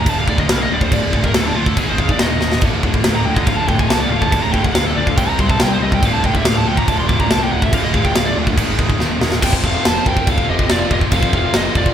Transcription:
0.06 D1 D2 A2 D3 A5, kick, crash
0.18 F5
0.27 D1 D2 A2 D3 D5, kick
0.38 D2 A2 D#5, kick
0.48 C2 D2 A2 D3 F5, snare, crash
0.59 D2 A2 D#5
0.70 D1 D2 A2 D3 D5
0.80 D2 A2 C5, kick
0.91 D1 D2 A2 D3 D5, kick, crash
1.12 D1 D2 A2 D3, kick
1.23 D2 A2 A#4, kick
1.34 D1 D2 A2 D3 A4, snare, crash
1.45 D4
1.55 D2 A2 D3 F4
1.65 D2 A2 A4, kick
1.77 G#1 G#2 D#3 G#3 G#4, kick, crash
1.90 C5
1.98 G#1 G#2 D#3 G#3 F5, kick
2.08 G#2 D#3 D5, kick
2.19 D#1 D#2 A#2 D#3 D#5, snare, crash
2.30 D#2 A#2
2.40 D#1 D#2 A#2 D#3, snare
2.52 D#2 A#2, snare
2.61 D1 D2 A2 D3 F3 D4 A4, kick, crash
2.83 D1 D2 A2 D3, kick
2.94 D2 A2, kick
3.04 D1 D2 A2 D3, snare, crash
3.15 A#5
3.25 D2 A2 D3 G5
3.34 D2 A2 D#5, kick
3.47 D1 D2 A2 D3 F5, kick, crash
3.57 A5
3.68 D1 D2 A2 D3 G5, kick
3.79 D2 A2 G#5, kick
3.89 C2 D2 A2 D3 A5, snare, crash
4.00 D2 A2 D5
4.09 D1 D2 A2 D3 F5
4.21 D2 A2 A5, kick
4.31 D1 D2 A2 D3 A5, kick, crash
4.43 A#5
4.53 D1 D2 A2 D3 G5, kick
4.64 D2 A2 F#5, kick
4.74 D1 D2 A2 D3 F5, snare, crash
4.86 A4
4.95 D2 A2 D3 D5
5.06 D2 A2 F5, kick
5.17 C2 C3 G3 C4 C5 G5, kick, crash
5.29 A#5
5.38 C2 C3 G3 C4 C6, kick
5.49 C3 G3 A5, kick
5.59 C2 C3 G3 C4 G5, snare, crash
5.69 C3 G3 C5
5.79 C2 C3 G3 C4 D#5
5.91 C3 G3 G5, kick
6.01 D1 D2 A2 D3 A3 F4 D5 F5, kick, crash
6.13 A5
6.23 D1 D2 A2 D3 G5, kick
6.34 D2 A2 E5, kick
6.43 D1 D2 A2 D3 F5, snare, crash
6.58 A5
6.66 D2 A2 D3 G5
6.77 D2 A2 A#5, kick
6.87 D1 D2 A2 D3 A5, kick, crash
6.98 C6
7.09 D1 D2 A2 D3 D6, kick
7.19 D2 A2 A#5, kick
7.29 C2 D2 A2 D3 A5, snare, crash
7.41 D2 A2 G5
7.50 D1 D2 A2 D3 F#5
7.61 D2 A2 E5, kick
7.71 D1 D2 A2 D3 F5, kick, crash
7.84 D#5
7.93 D1 D2 A2 D3 F5, kick
8.04 D2 A2 G5, kick
8.14 D1 D2 A2 D3 F5, snare, crash
8.26 D5
8.36 D2 A2 D3
8.46 D2 A2, kick
8.56 G#1 G#2 D#3 G#3 D#4 D#5, kick, crash
8.78 D1 G#2 D#3 G#3, kick
8.89 G#2 D#3, kick
8.99 D#1 D#2 A#2 D#3 A#3, snare
9.10 D#2 A#2
9.21 E1 D#2 A#2 D#3, snare
9.32 D#2 A#2, snare
9.40 F1 F2 C3 F3 A3 F4 C5 G5, kick, crash, china
9.53 kick
9.64 F1 A4 F5, kick
9.85 F1 C5 A5, snare, china
10.06 C2 A#4 G5, kick
10.17 kick
10.27 C2 A4 F5, kick, china
10.38 kick
10.47 F1 F2 C3 F3 G4 D#5
10.59 kick
10.68 F1 F2 C3 F3 D5, snare, china
10.72 F4
10.91 F1 G4 D#5, kick
11.01 kick
11.11 F1 F2 C3 F3 A4 F5, kick, china
11.23 kick
11.33 F1 A4 F5, kick
11.54 F1 A4 D#5, snare, china
11.75 F1 F4 D5, kick
11.86 kick

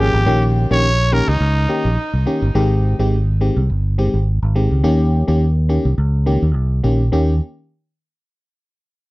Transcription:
Already playing: F3
0.00 A#3 C#4 G4 G#4
0.14 G#1
0.26 A#1 D#3 A#3 C#4 G4
0.71 A#1 D#3 A#3 C#4 G4 C#5
1.12 D#3 A#3 C#4 G4 A#4
1.28 C#2 D#4
1.41 C#2
1.69 D#3 A#3 C#4 G4
1.85 A#1
2.14 C2
2.26 D#3 A#3 C#4 G4
2.42 G1
2.55 G#1 D#3 G#3 C4 G4
2.99 G#1 D#3 G#3 C4 G4
3.40 D#3 G#3 C4 G4
3.56 C2
3.69 G1
3.98 D#3 G#3 C4 G4
4.14 G#1
4.42 G#1
4.55 D#3 G#3 C4 G4
4.71 C#2
4.83 D#2 D#3 A#3 C#4 G4
5.28 D#2 D#3 A#3 C#4 G4
5.69 D#3 A#3 C#4 G4
5.85 C2
5.98 C#2
6.26 D#3 A#3 C#4 G4
6.42 D#2
6.55 C2
6.83 A#1 D#3 A#3 C#4 G4
7.12 D#2 D#3 A#3 C#4 G4

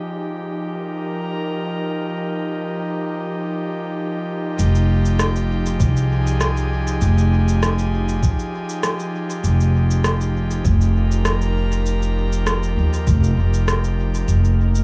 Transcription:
Already playing: F3 D#4 G4 G#4
0.57 A#4
4.59 F1, cabasa
4.75 cabasa
5.05 cabasa
5.19 cross-stick, cabasa
5.36 cabasa
5.46 G#4
5.66 cabasa
5.80 C2, kick, cabasa
5.97 cabasa
6.27 cabasa
6.41 cross-stick, cabasa
6.57 cabasa
6.87 cabasa
7.01 F1, cabasa
7.18 cabasa
7.48 cabasa
7.63 cross-stick, cabasa
7.79 cabasa
8.09 cabasa
8.23 kick, cabasa
8.39 cabasa
8.69 cabasa
8.83 cross-stick, cabasa
9.00 cabasa
9.30 cabasa
9.44 F1, cabasa
9.61 cabasa
9.91 cabasa
10.04 cross-stick, cabasa
10.21 cabasa
10.51 cabasa
10.65 F1, kick, cabasa
10.75 A#4
10.81 cabasa
11.11 cabasa
11.25 cross-stick, cabasa
11.42 cabasa
11.72 cabasa
11.86 cabasa
12.02 cabasa
12.32 cabasa
12.47 cross-stick, cabasa
12.63 cabasa
12.77 D#2
12.93 cabasa
13.07 F1, kick, cabasa
13.24 cabasa
13.37 F1
13.54 cabasa
13.68 cross-stick, cabasa
13.84 cabasa
14.14 cabasa
14.28 F1 A#3, cabasa
14.45 cabasa
14.75 cabasa

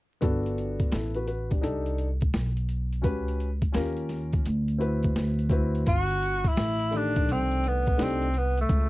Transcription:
0.21 G1 B3 D4 F#4 A4, kick, closed hi-hat
0.46 closed hi-hat
0.58 closed hi-hat
0.80 muted upright bass stroke, kick, closed hi-hat
0.92 A1 E4 A4, snare, closed hi-hat
1.14 F#4 B4, closed hi-hat
1.27 F#4 B4, closed hi-hat
1.50 D4 G4, kick, closed hi-hat
1.61 C2 D4 D#4 G4 A4, closed hi-hat
1.86 closed hi-hat
1.98 closed hi-hat
2.21 kick, closed hi-hat
2.34 B1, snare, closed hi-hat
2.57 closed hi-hat
2.69 closed hi-hat
2.93 closed hi-hat
3.02 C#2 C#4 F#4 G4 B4, kick, closed hi-hat
3.28 closed hi-hat
3.40 closed hi-hat
3.62 muted upright bass stroke, kick, closed hi-hat
3.72 D#2 C#4 F4 G4 A#4, snare, closed hi-hat
3.97 closed hi-hat
4.09 snare, closed hi-hat
4.33 kick, closed hi-hat
4.46 D2, closed hi-hat
4.68 closed hi-hat
4.78 C4 E4 F#4 B4, closed hi-hat
5.03 kick, closed hi-hat
5.16 D2, snare, closed hi-hat
5.39 closed hi-hat
5.49 C4 E4 F#4 B4, kick, closed hi-hat
5.75 closed hi-hat
5.86 G1 F#4, kick, closed hi-hat
6.11 closed hi-hat
6.23 closed hi-hat
6.44 E4, muted upright bass stroke, kick, closed hi-hat
6.57 A1, snare, closed hi-hat
6.79 closed hi-hat
6.91 D#3 A3 D4 G4, closed hi-hat
6.96 D4
7.16 kick, closed hi-hat
7.28 C2, closed hi-hat
7.32 C4
7.51 closed hi-hat
7.64 B3, closed hi-hat
7.86 kick, closed hi-hat
7.97 C2 A3 D4 D#4 G4, snare, closed hi-hat
8.02 C4
8.22 closed hi-hat
8.34 B3, closed hi-hat
8.57 A3, closed hi-hat
8.69 C#2, kick, closed hi-hat

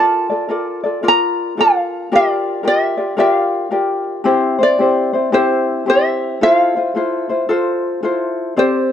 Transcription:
Already playing: F4 A4 A#4 D5 A5
0.30 F4 A4 D5
0.49 F4 A4 A#4 D5
0.84 F4 A4 D5
1.03 F4 A#4 D5
1.08 A#5
1.57 F4 A4 A#4 D5 F5
2.12 F4 G4 A#4 D5
2.63 F4 G4 A#4 D5
2.68 E5
2.97 F4 G4 D5
3.17 F4 G4 A#4 D5 E5
3.31 F5
3.71 F4 G4 A#4 D5
4.24 C4 E4 G4 C5
4.59 C4 E4 C5
4.63 D5
4.79 C4 E4 G4 C5
5.13 C4 E4 C5
5.32 C4 E4 G4 C5
5.86 C4 E4 G4 C5 E5
6.41 E4 F4 A4 C5 F5
6.76 E4 F4 C5
6.95 E4 F4 A4 C5
7.29 E4 F4 C5
7.49 F4 A4 C5
8.03 E4 F4 A4 C5
8.57 C4 G4 C5 D5

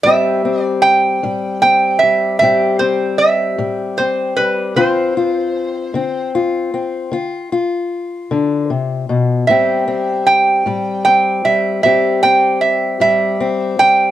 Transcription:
0.03 A2 G3 C4 G4 E5
0.45 C4
0.62 D5
0.82 G5
1.23 A2 G3
1.62 C4 G5
1.99 E5
2.03 G3
2.39 A2 G3 C4 E5
2.43 G4
2.79 C4 C5
3.18 E5
3.58 A2 G3
3.98 C4 C5
4.36 G3 B4
4.76 D3 C4 F4 C5
5.17 F4
5.94 D3 C4
6.35 F4
6.74 C4
7.12 D3 F4
7.52 F4
8.31 D3
8.70 C3
9.09 B2
9.47 A2 G3 C4 G4 E5
9.88 C4
10.27 G5
10.66 A2 G3
11.05 C4 G5
11.45 G3 E5
11.83 A2 G3 C4 G4 E5
12.23 C4 G5
12.61 E5
13.00 A2 G3 E5
13.40 C4
13.79 G3 G5

